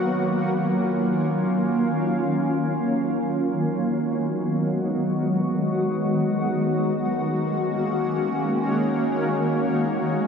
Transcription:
0, 0, Header, 1, 2, 480
1, 0, Start_track
1, 0, Key_signature, 6, "major"
1, 0, Tempo, 500000
1, 9860, End_track
2, 0, Start_track
2, 0, Title_t, "Ambient pad"
2, 0, Program_c, 0, 92
2, 0, Note_on_c, 0, 51, 78
2, 0, Note_on_c, 0, 54, 75
2, 0, Note_on_c, 0, 58, 72
2, 39, Note_on_c, 0, 61, 73
2, 40, Note_on_c, 0, 65, 83
2, 3294, Note_off_c, 0, 54, 0
2, 3294, Note_off_c, 0, 58, 0
2, 3298, Note_off_c, 0, 61, 0
2, 3298, Note_off_c, 0, 65, 0
2, 3328, Note_on_c, 0, 54, 72
2, 3328, Note_on_c, 0, 59, 75
2, 3329, Note_on_c, 0, 56, 69
2, 3330, Note_on_c, 0, 66, 88
2, 6585, Note_off_c, 0, 51, 0
2, 6588, Note_off_c, 0, 54, 0
2, 6588, Note_off_c, 0, 59, 0
2, 6625, Note_on_c, 0, 51, 82
2, 6625, Note_on_c, 0, 61, 73
2, 6626, Note_on_c, 0, 58, 74
2, 9860, Note_off_c, 0, 51, 0
2, 9860, Note_off_c, 0, 56, 0
2, 9860, Note_off_c, 0, 58, 0
2, 9860, Note_off_c, 0, 61, 0
2, 9860, Note_off_c, 0, 66, 0
2, 9860, End_track
0, 0, End_of_file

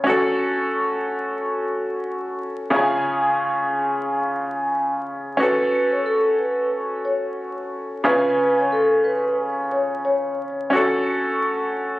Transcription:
0, 0, Header, 1, 3, 480
1, 0, Start_track
1, 0, Key_signature, 3, "minor"
1, 0, Tempo, 666667
1, 39, Time_signature, 4, 2, 24, 8
1, 8636, End_track
2, 0, Start_track
2, 0, Title_t, "Vibraphone"
2, 0, Program_c, 0, 11
2, 3879, Note_on_c, 0, 71, 106
2, 4237, Note_off_c, 0, 71, 0
2, 4260, Note_on_c, 0, 73, 83
2, 4349, Note_off_c, 0, 73, 0
2, 4362, Note_on_c, 0, 69, 95
2, 4576, Note_off_c, 0, 69, 0
2, 4600, Note_on_c, 0, 71, 78
2, 4816, Note_off_c, 0, 71, 0
2, 5076, Note_on_c, 0, 73, 76
2, 5204, Note_off_c, 0, 73, 0
2, 5803, Note_on_c, 0, 71, 109
2, 6159, Note_off_c, 0, 71, 0
2, 6184, Note_on_c, 0, 73, 71
2, 6271, Note_off_c, 0, 73, 0
2, 6281, Note_on_c, 0, 69, 89
2, 6496, Note_off_c, 0, 69, 0
2, 6512, Note_on_c, 0, 71, 83
2, 6731, Note_off_c, 0, 71, 0
2, 6998, Note_on_c, 0, 73, 74
2, 7125, Note_off_c, 0, 73, 0
2, 7235, Note_on_c, 0, 73, 87
2, 7453, Note_off_c, 0, 73, 0
2, 8636, End_track
3, 0, Start_track
3, 0, Title_t, "Upright piano"
3, 0, Program_c, 1, 0
3, 0, Control_c, 1, 64, 127
3, 26, Note_on_c, 1, 61, 72
3, 47, Control_c, 1, 64, 0
3, 47, Note_on_c, 1, 66, 68
3, 65, Note_on_c, 1, 69, 78
3, 187, Control_c, 1, 64, 127
3, 1924, Note_off_c, 1, 61, 0
3, 1934, Note_off_c, 1, 66, 0
3, 1943, Note_off_c, 1, 69, 0
3, 1947, Note_on_c, 1, 49, 67
3, 1958, Note_on_c, 1, 61, 59
3, 1967, Note_on_c, 1, 65, 59
3, 1969, Control_c, 1, 64, 0
3, 1977, Note_on_c, 1, 68, 65
3, 1988, Note_on_c, 1, 80, 73
3, 2105, Control_c, 1, 64, 127
3, 3844, Note_off_c, 1, 49, 0
3, 3849, Note_off_c, 1, 61, 0
3, 3854, Note_off_c, 1, 65, 0
3, 3859, Note_off_c, 1, 68, 0
3, 3865, Note_off_c, 1, 80, 0
3, 3867, Note_on_c, 1, 61, 71
3, 3886, Note_on_c, 1, 66, 67
3, 3888, Control_c, 1, 64, 0
3, 3905, Note_on_c, 1, 69, 81
3, 4034, Control_c, 1, 64, 127
3, 5764, Note_off_c, 1, 61, 0
3, 5774, Note_off_c, 1, 66, 0
3, 5783, Note_off_c, 1, 69, 0
3, 5788, Note_on_c, 1, 49, 68
3, 5796, Note_on_c, 1, 61, 60
3, 5807, Note_on_c, 1, 65, 60
3, 5808, Control_c, 1, 64, 0
3, 5827, Note_on_c, 1, 80, 71
3, 5913, Control_c, 1, 64, 127
3, 7685, Note_off_c, 1, 49, 0
3, 7689, Note_off_c, 1, 61, 0
3, 7694, Note_off_c, 1, 65, 0
3, 7704, Note_off_c, 1, 80, 0
3, 7704, Note_on_c, 1, 61, 70
3, 7724, Note_on_c, 1, 66, 68
3, 7729, Control_c, 1, 64, 0
3, 7744, Note_on_c, 1, 69, 80
3, 7869, Control_c, 1, 64, 127
3, 8636, Note_off_c, 1, 61, 0
3, 8636, Note_off_c, 1, 66, 0
3, 8636, Note_off_c, 1, 69, 0
3, 8636, End_track
0, 0, End_of_file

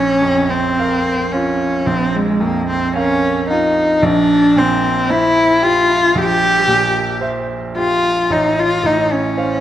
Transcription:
0, 0, Header, 1, 3, 480
1, 0, Start_track
1, 0, Key_signature, -5, "minor"
1, 0, Tempo, 1145038
1, 323, Tempo, 1086957
1, 1762, Time_signature, 4, 2, 24, 8
1, 1763, Tempo, 1069519
1, 4264, End_track
2, 0, Start_track
2, 0, Title_t, "Grand piano"
2, 0, Program_c, 0, 0
2, 0, Control_c, 0, 64, 127
2, 0, Note_on_c, 0, 34, 67
2, 90, Note_on_c, 0, 41, 51
2, 331, Note_on_c, 0, 77, 54
2, 333, Note_on_c, 0, 70, 47
2, 472, Note_off_c, 0, 41, 0
2, 552, Note_off_c, 0, 70, 0
2, 552, Note_off_c, 0, 77, 0
2, 574, Note_on_c, 0, 65, 52
2, 790, Note_off_c, 0, 34, 0
2, 805, Note_on_c, 0, 34, 61
2, 952, Note_off_c, 0, 65, 0
2, 1044, Note_on_c, 0, 41, 52
2, 1288, Note_on_c, 0, 70, 52
2, 1288, Note_on_c, 0, 77, 55
2, 1428, Note_off_c, 0, 41, 0
2, 1508, Note_off_c, 0, 70, 0
2, 1508, Note_off_c, 0, 77, 0
2, 1530, Note_on_c, 0, 65, 51
2, 1745, Note_off_c, 0, 34, 0
2, 1759, Note_on_c, 0, 34, 68
2, 1765, Note_off_c, 0, 65, 0
2, 1769, Control_c, 0, 64, 0
2, 1833, Control_c, 0, 64, 127
2, 2001, Note_on_c, 0, 46, 53
2, 2239, Note_on_c, 0, 72, 50
2, 2239, Note_on_c, 0, 76, 55
2, 2383, Note_off_c, 0, 46, 0
2, 2459, Note_off_c, 0, 72, 0
2, 2459, Note_off_c, 0, 76, 0
2, 2475, Note_on_c, 0, 67, 55
2, 2694, Note_off_c, 0, 34, 0
2, 2714, Note_on_c, 0, 34, 62
2, 2855, Note_off_c, 0, 67, 0
2, 2951, Note_on_c, 0, 46, 53
2, 3190, Note_on_c, 0, 72, 50
2, 3191, Note_on_c, 0, 76, 53
2, 3340, Note_off_c, 0, 46, 0
2, 3417, Note_off_c, 0, 72, 0
2, 3418, Note_off_c, 0, 76, 0
2, 3444, Note_on_c, 0, 67, 49
2, 3661, Note_off_c, 0, 34, 0
2, 3678, Note_on_c, 0, 33, 64
2, 3682, Note_off_c, 0, 67, 0
2, 3686, Control_c, 0, 64, 0
2, 3755, Control_c, 0, 64, 127
2, 3919, Note_on_c, 0, 45, 50
2, 4161, Note_on_c, 0, 72, 42
2, 4163, Note_on_c, 0, 77, 49
2, 4264, Note_off_c, 0, 33, 0
2, 4264, Note_off_c, 0, 45, 0
2, 4264, Note_off_c, 0, 72, 0
2, 4264, Note_off_c, 0, 77, 0
2, 4264, End_track
3, 0, Start_track
3, 0, Title_t, "Cello"
3, 0, Program_c, 1, 42
3, 0, Note_on_c, 1, 61, 89
3, 210, Note_on_c, 1, 60, 81
3, 217, Note_off_c, 1, 61, 0
3, 567, Note_on_c, 1, 61, 78
3, 573, Note_off_c, 1, 60, 0
3, 804, Note_on_c, 1, 60, 85
3, 811, Note_off_c, 1, 61, 0
3, 933, Note_on_c, 1, 56, 79
3, 940, Note_off_c, 1, 60, 0
3, 1054, Note_on_c, 1, 58, 77
3, 1061, Note_off_c, 1, 56, 0
3, 1169, Note_off_c, 1, 58, 0
3, 1175, Note_on_c, 1, 60, 74
3, 1287, Note_off_c, 1, 60, 0
3, 1294, Note_on_c, 1, 61, 95
3, 1525, Note_off_c, 1, 61, 0
3, 1530, Note_on_c, 1, 63, 81
3, 1771, Note_on_c, 1, 62, 95
3, 1778, Note_off_c, 1, 63, 0
3, 2010, Note_on_c, 1, 60, 82
3, 2016, Note_off_c, 1, 62, 0
3, 2247, Note_on_c, 1, 64, 94
3, 2254, Note_off_c, 1, 60, 0
3, 2488, Note_on_c, 1, 65, 92
3, 2495, Note_off_c, 1, 64, 0
3, 2728, Note_on_c, 1, 67, 98
3, 2735, Note_off_c, 1, 65, 0
3, 3202, Note_off_c, 1, 67, 0
3, 3444, Note_on_c, 1, 65, 87
3, 3688, Note_on_c, 1, 63, 74
3, 3695, Note_off_c, 1, 65, 0
3, 3812, Note_on_c, 1, 65, 87
3, 3818, Note_off_c, 1, 63, 0
3, 3932, Note_on_c, 1, 63, 79
3, 3939, Note_off_c, 1, 65, 0
3, 4048, Note_on_c, 1, 61, 77
3, 4055, Note_off_c, 1, 63, 0
3, 4264, Note_off_c, 1, 61, 0
3, 4264, End_track
0, 0, End_of_file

